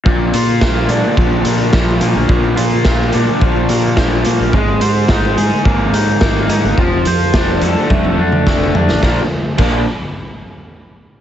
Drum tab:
CC |----------------|----------------|----------------|----------------|
HH |--x---x---x---x-|--x---x---x---x-|--x---x---x---x-|--x---x---------|
SD |----o-------o---|----o-------o---|----o-------o---|----o-------o--o|
T1 |----------------|----------------|----------------|--------oo------|
T2 |----------------|----------------|----------------|-----------o----|
FT |----------------|----------------|----------------|--------------o-|
BD |o---o---o---o---|o---o---o---o---|o---o---o---o---|o---o---o---o---|

CC |----x-----------|
HH |----------------|
SD |o---------------|
T1 |----------------|
T2 |----------------|
FT |----------------|
BD |o---o-----------|